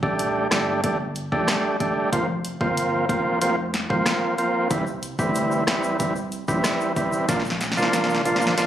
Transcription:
Already playing: impact
0.03 A1 G3 A3 D4 G4, kick
0.19 closed hi-hat
0.51 G1 G3 A3 D4 G4, cross-stick, snare, closed hi-hat
0.84 G1 G3 A3 D4 G4, kick, closed hi-hat
1.16 closed hi-hat
1.32 F1 G3 A3 D4 G4, kick
1.48 cross-stick, snare, closed hi-hat
1.80 G3 A3 D4 G4, kick, closed hi-hat
2.12 F1 F3 A#3 C4 F4, kick, closed hi-hat
2.45 closed hi-hat
2.61 G1 F3 A#3 C4 F4, kick
2.77 closed hi-hat
3.09 F1 F3 A#3 C4 F4, kick, closed hi-hat
3.41 F1 F3 A#3 C4 F4, closed hi-hat
3.74 snare, closed hi-hat
3.90 E1 F3 A#3 C4 F4, kick
4.06 cross-stick, snare, closed hi-hat
4.38 F3 A#3 C4 F4, closed hi-hat
4.70 C2 E3 G3 C4 E4, kick, closed hi-hat, shaker
4.87 shaker
5.03 closed hi-hat, shaker
5.19 D2 E3 G3 C4 E4, kick, shaker
5.35 closed hi-hat, shaker
5.51 shaker
5.67 C2 E3 G3 C4 E4, cross-stick, snare, closed hi-hat
5.83 shaker
5.99 C2 E3 G3 C4 E4, kick, closed hi-hat, shaker
6.16 shaker
6.32 closed hi-hat, shaker
6.48 A#1 E3 G3 C4 E4, kick, shaker
6.64 cross-stick, snare, closed hi-hat, shaker
6.81 shaker
6.96 E3 G3 C4 E4, kick, closed hi-hat, shaker
7.13 shaker
7.28 A#1 F3 A#3 D4 F4, kick, snare, closed hi-hat, shaker
7.40 snare
7.45 shaker
7.50 snare
7.61 snare, closed hi-hat, shaker
7.72 snare
7.77 C2 F3 A#3 D4 F4, shaker
7.82 snare
7.93 snare, closed hi-hat, shaker
8.04 snare
8.10 shaker
8.15 snare
8.25 A#1 F3 A#3 D4 F4, closed hi-hat, shaker
8.36 snare
8.41 shaker
8.47 snare
8.58 A#1 F3 A#3 D4 F4, snare, closed hi-hat, shaker

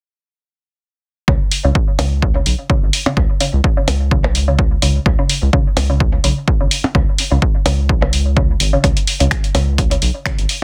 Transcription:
1.28 C#2 C#3, kick, percussion blips
1.51 open hi-hat
1.64 C#2 C#3
1.75 kick
1.99 C#2 C#3, open hi-hat, percussion blips
2.22 kick
2.35 C#3
2.46 B1, open hi-hat
2.70 C#3, kick
2.83 G#1
2.93 open hi-hat
3.06 C#3, percussion blips
3.17 C#2, kick, percussion blips
3.40 C#3, open hi-hat
3.53 C#2
3.64 kick
3.77 C#3
3.88 C#2, open hi-hat, percussion blips
4.11 B1 C#3, kick
4.24 percussion blips
4.35 C#2, open hi-hat
4.48 C#3
4.59 kick
4.82 C#2 C#3, open hi-hat
5.06 C#2, kick, percussion blips
5.19 C#3
5.29 open hi-hat
5.42 C#2
5.53 C#3, kick
5.77 C#2, open hi-hat, percussion blips
5.90 C#3
6.00 kick
6.24 B1 C#3, open hi-hat
6.48 kick
6.61 G#1 C#3
6.71 open hi-hat
6.84 percussion blips
6.95 C#2 C#3, kick, percussion blips
7.18 open hi-hat
7.31 C#2 C#3
7.42 kick
7.66 C#2 C#3, open hi-hat, percussion blips
7.89 B1, kick
8.02 C#3, percussion blips
8.13 C#2, open hi-hat
8.37 C#3, kick
8.60 G#1, open hi-hat
8.73 C#3
8.84 C#2 C#3, kick, closed hi-hat, percussion blips
8.97 closed hi-hat
9.07 open hi-hat
9.20 C#2 C#3, closed hi-hat
9.31 finger snap, kick, closed hi-hat
9.44 closed hi-hat
9.55 C#2 C#3, open hi-hat, percussion blips
9.78 kick, closed hi-hat
9.91 C#3, closed hi-hat
10.02 B1, open hi-hat
10.26 C#3, finger snap, kick, closed hi-hat
10.38 G#1, closed hi-hat
10.49 open hi-hat

